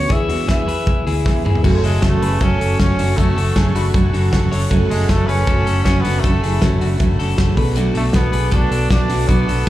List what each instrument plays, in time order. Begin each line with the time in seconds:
Already playing: synth keys B3 C#4 F#4, steel-string acoustic guitar C#4, clean electric guitar D4, trumpet C#5
0.09 fingered electric bass E2, steel-string acoustic guitar E3 G#3 B3 E4, synth keys B3 E4 G#4, clean electric guitar E4 G#4, trumpet E5, kick, closed hi-hat
0.29 fingered electric bass E2, steel-string acoustic guitar G#3 B3 E4, clean electric guitar D4 F#4, open hi-hat
0.47 fingered electric bass E2, steel-string acoustic guitar E3 G#3 B3 E4, clean electric guitar E4 G#4, kick, snare, closed hi-hat
0.51 trumpet E5
0.67 fingered electric bass E2, steel-string acoustic guitar G#3 B3 E4, clean electric guitar G#4 B4, open hi-hat
0.87 fingered electric bass E2, steel-string acoustic guitar E3 G#3 B3 E4, kick, closed hi-hat
1.05 fingered electric bass D2, clean electric guitar E4 G#4, open hi-hat
1.26 fingered electric bass E2, steel-string acoustic guitar E3 G#3 B3 E4, kick, snare
1.44 fingered electric bass E2, steel-string acoustic guitar G#3 B3 E4, clean electric guitar E4 G#4, mid tom
1.55 floor tom
1.63 fingered electric bass F#1, steel-string acoustic guitar F#2 C#3 F#3 A3 C#4, synth keys A3 C#4 F#4 A4, clean electric guitar C#4 F#4, analog synth pad A4 F#5 C#6, kick, crash
1.84 fingered electric bass F#1, trumpet G#3, steel-string acoustic guitar A3, clean electric guitar F#4 A4, open hi-hat
2.02 fingered electric bass F#1, steel-string acoustic guitar C#3 F#3 A3 C#4, trumpet A3, kick, snare, ride
2.21 fingered electric bass F#1, steel-string acoustic guitar F#3 A3 C#4, clean electric guitar G#4 B4, open hi-hat
2.41 fingered electric bass F#1, steel-string acoustic guitar F#2 C#3 F#3 A3 C#4, trumpet C#4, clean electric guitar F#4 A4, kick, hi-hat pedal, ride
2.60 fingered electric bass F#1, clean electric guitar F#4 A4, open hi-hat
2.79 fingered electric bass F#1, steel-string acoustic guitar C#3 F#3 A3 C#4, clean electric guitar C#4 F#4, trumpet C#4, kick, snare, hi-hat pedal, ride
2.97 fingered electric bass F#1, steel-string acoustic guitar F#3 A3 C#4, clean electric guitar D4 F#4, open hi-hat
3.17 fingered electric bass F#1, steel-string acoustic guitar F#2 C#3 F#3 A3 C#4, trumpet A3, clean electric guitar C#4 F#4, kick, hi-hat pedal, ride
3.36 fingered electric bass F#1, steel-string acoustic guitar F#3 A3 C#4, clean electric guitar F#4 A4, open hi-hat
3.56 fingered electric bass F#1, steel-string acoustic guitar C#3 F#3 A3 C#4, clean electric guitar C#4 G#4, kick, snare, ride
3.75 fingered electric bass F#1, steel-string acoustic guitar F#3 A3 C#4, clean electric guitar D4 F#4, synth keys B5, open hi-hat
3.93 fingered electric bass F#1, steel-string acoustic guitar F#2 C#3 F#3 A3 C#4, synth keys A5, kick, hi-hat pedal, ride
4.03 synth keys G#5
4.13 fingered electric bass F#1, clean electric guitar F#4 A4, open hi-hat
4.31 fingered electric bass F#1, steel-string acoustic guitar C#3 F#3 A3 C#4, synth keys F#5, kick, snare, hi-hat pedal, ride
4.51 fingered electric bass F#1, steel-string acoustic guitar F#3 A3 C#4, clean electric guitar A4 C#5, synth keys E5, open hi-hat
4.70 fingered electric bass F#1, steel-string acoustic guitar F#2 C#3 F#3 A3 C#4, synth keys A3 C#4 F#4 A4, clean electric guitar C#4 F#4, analog synth pad B5, kick, hi-hat pedal, ride
4.90 fingered electric bass F#1, steel-string acoustic guitar F#3 A3 C#4, trumpet G#3, clean electric guitar F#4 A4, open hi-hat
5.09 fingered electric bass F#1, steel-string acoustic guitar C#3 F#3 A3 C#4, trumpet A3, kick, snare, hi-hat pedal, ride
5.27 fingered electric bass F#1, steel-string acoustic guitar F#3 A3 C#4, trumpet C#4, clean electric guitar G#4 B4, open hi-hat
5.47 fingered electric bass F#1, steel-string acoustic guitar F#2 C#3 F#3 A3 C#4, clean electric guitar F#4 A4, kick, ride
5.66 fingered electric bass F#1, clean electric guitar F#4 A4, open hi-hat
5.83 fingered electric bass F#1, steel-string acoustic guitar C#3, trumpet C#4, clean electric guitar C#4 F#4, kick, snare, hi-hat pedal, ride
5.88 steel-string acoustic guitar F#3 A3 C#4
6.01 trumpet B3, clean electric guitar F#4, open hi-hat
6.05 fingered electric bass F#1, clean electric guitar D4
6.20 trumpet A3, hi-hat pedal, ride
6.24 fingered electric bass F#1, steel-string acoustic guitar F#2 C#3 F#3 A3 C#4, clean electric guitar F#4 A4, kick
6.43 fingered electric bass F#1, steel-string acoustic guitar F#3 A3 C#4, clean electric guitar E4 G#4, open hi-hat
6.62 fingered electric bass F#1, steel-string acoustic guitar C#3 F#3 A3 C#4, clean electric guitar C#4 F#4, kick, snare, hi-hat pedal, ride
6.81 fingered electric bass F#1, steel-string acoustic guitar F#3 A3 C#4, clean electric guitar D4 F#4, open hi-hat
6.99 fingered electric bass F#1, steel-string acoustic guitar F#2 C#3 F#3 A3 C#4, kick, hi-hat pedal, ride
7.19 fingered electric bass F#1, clean electric guitar F#4 A4, open hi-hat
7.37 fingered electric bass F#1, steel-string acoustic guitar C#3 F#3 A3 C#4, synth keys A3 C#4 F#4 G#4, kick, snare, ride
7.56 fingered electric bass B1, steel-string acoustic guitar F#3 A3 D4, synth keys B3 D4 F#4 A4, clean electric guitar F#4 B4, analog synth pad B4 A5 D6, kick, open hi-hat
7.75 steel-string acoustic guitar B2 F#3 A3 D4, clean electric guitar D4 F#4, hi-hat pedal, ride
7.95 fingered electric bass B1, steel-string acoustic guitar F#3 A3 D4, trumpet A3, clean electric guitar F#4 A4, open hi-hat
8.13 fingered electric bass B1, steel-string acoustic guitar B2 F#3 A3 D4, trumpet B3, kick, snare, hi-hat pedal, ride
8.32 fingered electric bass B1, clean electric guitar G#4 B4, open hi-hat
8.51 fingered electric bass B1, steel-string acoustic guitar B2 F#3 A3 D4, trumpet D4, clean electric guitar F#4 A4, kick, hi-hat pedal, ride
8.71 fingered electric bass B1, clean electric guitar F#4 A4, open hi-hat
8.90 fingered electric bass B1, steel-string acoustic guitar B2 F#3 A3 D4, trumpet D4, clean electric guitar D4 F#4, kick, snare, hi-hat pedal, ride
9.08 fingered electric bass B1, steel-string acoustic guitar F#3 A3 D4, clean electric guitar D4 F#4, open hi-hat
9.28 fingered electric bass B1, steel-string acoustic guitar B2 F#3 A3 D4, trumpet B3, clean electric guitar D4 F#4, kick, hi-hat pedal, ride
9.46 fingered electric bass B1, steel-string acoustic guitar F#3 A3 D4, clean electric guitar F#4 A4, open hi-hat